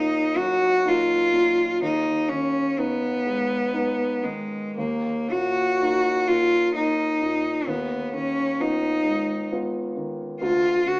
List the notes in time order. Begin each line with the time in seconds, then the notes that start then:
Already playing: D#2 A#2 A#3 D#4
0.36 F#3 F#4
0.85 A#3 D#4 F4
1.34 A#2
1.82 D#2 D#4
2.29 D#3 C#4
2.78 B3 D#4
3.27 G#3
3.73 B3 D#4
4.23 D#3 G#3
4.77 D#2 A#3
5.31 A#2 F#4
5.81 A#3 D#4
6.27 A#3 F4
6.74 A#3 D#4
7.22 A#2
7.67 D#2 B3
8.14 D#3 C#4
8.60 B3 D#4 F4
9.05 G#3
9.52 B3 F4
9.97 D#3
10.41 D2 F4
10.86 D3 F#4